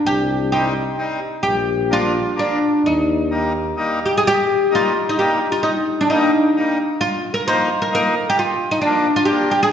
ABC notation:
X:1
M:3/4
L:1/16
Q:"Swing" 1/4=130
K:Eb
V:1 name="Oud"
G4 G6 z2 | G4 F4 D4 | E8 z2 G A | G4 F3 E G3 F |
E3 D E6 z2 | F3 B c3 B B3 G | F3 E D3 F G2 G A |]
V:2 name="Accordion"
z4 [G,CE]2 z2 [G,CE]2 z2 | z4 [F,B,D]2 z2 [F,B,D]2 z2 | z4 [G,B,E]2 z2 [G,B,E]2 z2 | z4 [G,B,E]2 z2 [G,B,E]2 z2 |
z4 [G,B,E]2 z2 [G,B,E]2 z2 | z4 [F,B,E]2 z2 [F,B,E]2 z2 | z4 [F,B,D]2 z2 [F,B,D]2 z2 |]
V:3 name="Tuba" clef=bass
C,,12 | B,,,12 | E,,12 | z12 |
z12 | z12 | z12 |]